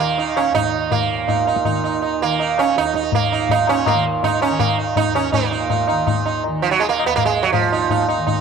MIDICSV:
0, 0, Header, 1, 4, 480
1, 0, Start_track
1, 0, Tempo, 367647
1, 1193, Time_signature, 3, 2, 24, 8
1, 10976, End_track
2, 0, Start_track
2, 0, Title_t, "Sitar"
2, 0, Program_c, 0, 104
2, 0, Note_on_c, 0, 58, 77
2, 237, Note_on_c, 0, 63, 36
2, 457, Note_off_c, 0, 63, 0
2, 480, Note_on_c, 0, 61, 81
2, 486, Note_off_c, 0, 58, 0
2, 708, Note_off_c, 0, 61, 0
2, 713, Note_on_c, 0, 63, 97
2, 1196, Note_on_c, 0, 58, 70
2, 1209, Note_off_c, 0, 63, 0
2, 1669, Note_on_c, 0, 63, 35
2, 1868, Note_off_c, 0, 58, 0
2, 1896, Note_off_c, 0, 63, 0
2, 1922, Note_on_c, 0, 63, 35
2, 2141, Note_off_c, 0, 63, 0
2, 2157, Note_on_c, 0, 63, 38
2, 2381, Note_off_c, 0, 63, 0
2, 2400, Note_on_c, 0, 63, 36
2, 2620, Note_off_c, 0, 63, 0
2, 2636, Note_on_c, 0, 63, 34
2, 2861, Note_off_c, 0, 63, 0
2, 2901, Note_on_c, 0, 58, 84
2, 3128, Note_on_c, 0, 63, 35
2, 3348, Note_off_c, 0, 63, 0
2, 3381, Note_on_c, 0, 61, 85
2, 3386, Note_off_c, 0, 58, 0
2, 3619, Note_off_c, 0, 61, 0
2, 3627, Note_on_c, 0, 63, 97
2, 3837, Note_off_c, 0, 63, 0
2, 3853, Note_on_c, 0, 63, 35
2, 4072, Note_off_c, 0, 63, 0
2, 4110, Note_on_c, 0, 58, 84
2, 4337, Note_on_c, 0, 63, 37
2, 4554, Note_off_c, 0, 63, 0
2, 4586, Note_on_c, 0, 63, 89
2, 4591, Note_off_c, 0, 58, 0
2, 4814, Note_off_c, 0, 63, 0
2, 4819, Note_on_c, 0, 61, 86
2, 5058, Note_on_c, 0, 58, 82
2, 5059, Note_off_c, 0, 61, 0
2, 5275, Note_off_c, 0, 58, 0
2, 5535, Note_on_c, 0, 63, 86
2, 5753, Note_off_c, 0, 63, 0
2, 5771, Note_on_c, 0, 61, 80
2, 5999, Note_on_c, 0, 58, 71
2, 6014, Note_off_c, 0, 61, 0
2, 6224, Note_off_c, 0, 58, 0
2, 6236, Note_on_c, 0, 63, 34
2, 6463, Note_off_c, 0, 63, 0
2, 6488, Note_on_c, 0, 63, 90
2, 6721, Note_off_c, 0, 63, 0
2, 6726, Note_on_c, 0, 61, 71
2, 6943, Note_off_c, 0, 61, 0
2, 6948, Note_on_c, 0, 63, 37
2, 6967, Note_on_c, 0, 58, 72
2, 7178, Note_off_c, 0, 63, 0
2, 7196, Note_on_c, 0, 63, 39
2, 7421, Note_off_c, 0, 63, 0
2, 7437, Note_on_c, 0, 63, 35
2, 7633, Note_off_c, 0, 58, 0
2, 7653, Note_off_c, 0, 63, 0
2, 7669, Note_on_c, 0, 63, 36
2, 7897, Note_off_c, 0, 63, 0
2, 7920, Note_on_c, 0, 63, 39
2, 8143, Note_off_c, 0, 63, 0
2, 8167, Note_on_c, 0, 63, 37
2, 8386, Note_off_c, 0, 63, 0
2, 8648, Note_on_c, 0, 53, 80
2, 8758, Note_off_c, 0, 53, 0
2, 8763, Note_on_c, 0, 54, 77
2, 8875, Note_on_c, 0, 56, 85
2, 8883, Note_off_c, 0, 54, 0
2, 8989, Note_off_c, 0, 56, 0
2, 8994, Note_on_c, 0, 58, 94
2, 9217, Note_off_c, 0, 58, 0
2, 9222, Note_on_c, 0, 59, 105
2, 9340, Note_off_c, 0, 59, 0
2, 9345, Note_on_c, 0, 58, 102
2, 9466, Note_off_c, 0, 58, 0
2, 9471, Note_on_c, 0, 56, 88
2, 9698, Note_on_c, 0, 54, 89
2, 9719, Note_off_c, 0, 56, 0
2, 9816, Note_off_c, 0, 54, 0
2, 9824, Note_on_c, 0, 53, 75
2, 10084, Note_on_c, 0, 63, 40
2, 10300, Note_off_c, 0, 63, 0
2, 10319, Note_on_c, 0, 63, 39
2, 10494, Note_off_c, 0, 53, 0
2, 10537, Note_off_c, 0, 63, 0
2, 10556, Note_on_c, 0, 63, 41
2, 10774, Note_off_c, 0, 63, 0
2, 10792, Note_on_c, 0, 63, 39
2, 10976, Note_off_c, 0, 63, 0
2, 10976, End_track
3, 0, Start_track
3, 0, Title_t, "Tanpura"
3, 0, Program_c, 1, 104
3, 0, Note_on_c, 1, 39, 59
3, 0, Note_on_c, 1, 46, 56
3, 0, Note_on_c, 1, 51, 61
3, 648, Note_off_c, 1, 39, 0
3, 653, Note_on_c, 1, 39, 55
3, 1401, Note_off_c, 1, 46, 0
3, 1406, Note_on_c, 1, 46, 61
3, 2139, Note_off_c, 1, 51, 0
3, 2139, Note_on_c, 1, 51, 56
3, 2888, Note_off_c, 1, 51, 0
3, 2888, Note_on_c, 1, 51, 59
3, 3624, Note_off_c, 1, 39, 0
3, 3629, Note_on_c, 1, 39, 61
3, 4378, Note_off_c, 1, 46, 0
3, 4383, Note_on_c, 1, 46, 64
3, 5134, Note_off_c, 1, 51, 0
3, 5134, Note_on_c, 1, 51, 64
3, 5861, Note_off_c, 1, 51, 0
3, 5861, Note_on_c, 1, 51, 59
3, 6605, Note_off_c, 1, 39, 0
3, 6610, Note_on_c, 1, 39, 54
3, 6952, Note_off_c, 1, 46, 0
3, 6957, Note_on_c, 1, 46, 64
3, 7712, Note_off_c, 1, 51, 0
3, 7712, Note_on_c, 1, 51, 59
3, 8460, Note_off_c, 1, 51, 0
3, 8460, Note_on_c, 1, 51, 64
3, 9196, Note_off_c, 1, 39, 0
3, 9201, Note_on_c, 1, 39, 63
3, 9930, Note_off_c, 1, 46, 0
3, 9935, Note_on_c, 1, 46, 58
3, 10675, Note_off_c, 1, 51, 0
3, 10675, Note_on_c, 1, 51, 58
3, 10976, Note_off_c, 1, 39, 0
3, 10976, Note_off_c, 1, 46, 0
3, 10976, Note_off_c, 1, 51, 0
3, 10976, End_track
4, 0, Start_track
4, 0, Title_t, "Tabla"
4, 229, Note_on_c, 9, 63, 73
4, 359, Note_off_c, 9, 63, 0
4, 474, Note_on_c, 9, 60, 63
4, 604, Note_off_c, 9, 60, 0
4, 720, Note_on_c, 9, 63, 70
4, 720, Note_on_c, 9, 64, 65
4, 850, Note_off_c, 9, 63, 0
4, 850, Note_off_c, 9, 64, 0
4, 1187, Note_on_c, 9, 63, 92
4, 1187, Note_on_c, 9, 64, 84
4, 1318, Note_off_c, 9, 63, 0
4, 1318, Note_off_c, 9, 64, 0
4, 1671, Note_on_c, 9, 63, 72
4, 1671, Note_on_c, 9, 64, 65
4, 1802, Note_off_c, 9, 63, 0
4, 1802, Note_off_c, 9, 64, 0
4, 1909, Note_on_c, 9, 60, 62
4, 2039, Note_off_c, 9, 60, 0
4, 2042, Note_on_c, 9, 37, 61
4, 2151, Note_on_c, 9, 63, 72
4, 2151, Note_on_c, 9, 64, 64
4, 2173, Note_off_c, 9, 37, 0
4, 2282, Note_off_c, 9, 63, 0
4, 2282, Note_off_c, 9, 64, 0
4, 2631, Note_on_c, 9, 63, 70
4, 2762, Note_off_c, 9, 63, 0
4, 3124, Note_on_c, 9, 63, 73
4, 3255, Note_off_c, 9, 63, 0
4, 3366, Note_on_c, 9, 60, 59
4, 3497, Note_off_c, 9, 60, 0
4, 3606, Note_on_c, 9, 62, 70
4, 3724, Note_off_c, 9, 62, 0
4, 3724, Note_on_c, 9, 62, 59
4, 3843, Note_on_c, 9, 37, 62
4, 3854, Note_off_c, 9, 62, 0
4, 3956, Note_on_c, 9, 62, 59
4, 3973, Note_off_c, 9, 37, 0
4, 4075, Note_on_c, 9, 63, 95
4, 4075, Note_on_c, 9, 64, 80
4, 4087, Note_off_c, 9, 62, 0
4, 4206, Note_off_c, 9, 63, 0
4, 4206, Note_off_c, 9, 64, 0
4, 4556, Note_on_c, 9, 63, 72
4, 4556, Note_on_c, 9, 64, 63
4, 4687, Note_off_c, 9, 63, 0
4, 4687, Note_off_c, 9, 64, 0
4, 4797, Note_on_c, 9, 60, 75
4, 4927, Note_off_c, 9, 60, 0
4, 5043, Note_on_c, 9, 60, 86
4, 5043, Note_on_c, 9, 64, 77
4, 5174, Note_off_c, 9, 60, 0
4, 5174, Note_off_c, 9, 64, 0
4, 5520, Note_on_c, 9, 63, 72
4, 5520, Note_on_c, 9, 64, 59
4, 5651, Note_off_c, 9, 63, 0
4, 5651, Note_off_c, 9, 64, 0
4, 5764, Note_on_c, 9, 60, 72
4, 5895, Note_off_c, 9, 60, 0
4, 6000, Note_on_c, 9, 60, 83
4, 6000, Note_on_c, 9, 64, 74
4, 6130, Note_off_c, 9, 60, 0
4, 6130, Note_off_c, 9, 64, 0
4, 6475, Note_on_c, 9, 63, 65
4, 6475, Note_on_c, 9, 64, 62
4, 6606, Note_off_c, 9, 63, 0
4, 6606, Note_off_c, 9, 64, 0
4, 6721, Note_on_c, 9, 60, 72
4, 6852, Note_off_c, 9, 60, 0
4, 6955, Note_on_c, 9, 63, 98
4, 6955, Note_on_c, 9, 64, 89
4, 7086, Note_off_c, 9, 63, 0
4, 7086, Note_off_c, 9, 64, 0
4, 7436, Note_on_c, 9, 63, 74
4, 7436, Note_on_c, 9, 64, 67
4, 7567, Note_off_c, 9, 63, 0
4, 7567, Note_off_c, 9, 64, 0
4, 7685, Note_on_c, 9, 60, 64
4, 7816, Note_off_c, 9, 60, 0
4, 7925, Note_on_c, 9, 63, 77
4, 7925, Note_on_c, 9, 64, 69
4, 8055, Note_off_c, 9, 63, 0
4, 8055, Note_off_c, 9, 64, 0
4, 8409, Note_on_c, 9, 63, 76
4, 8539, Note_off_c, 9, 63, 0
4, 8887, Note_on_c, 9, 63, 73
4, 9018, Note_off_c, 9, 63, 0
4, 9133, Note_on_c, 9, 60, 66
4, 9263, Note_off_c, 9, 60, 0
4, 9361, Note_on_c, 9, 63, 80
4, 9361, Note_on_c, 9, 64, 69
4, 9492, Note_off_c, 9, 63, 0
4, 9492, Note_off_c, 9, 64, 0
4, 9836, Note_on_c, 9, 63, 98
4, 9836, Note_on_c, 9, 64, 85
4, 9967, Note_off_c, 9, 63, 0
4, 9967, Note_off_c, 9, 64, 0
4, 10312, Note_on_c, 9, 63, 79
4, 10312, Note_on_c, 9, 64, 73
4, 10442, Note_off_c, 9, 63, 0
4, 10442, Note_off_c, 9, 64, 0
4, 10556, Note_on_c, 9, 60, 67
4, 10687, Note_off_c, 9, 60, 0
4, 10798, Note_on_c, 9, 63, 77
4, 10798, Note_on_c, 9, 64, 68
4, 10929, Note_off_c, 9, 63, 0
4, 10929, Note_off_c, 9, 64, 0
4, 10976, End_track
0, 0, End_of_file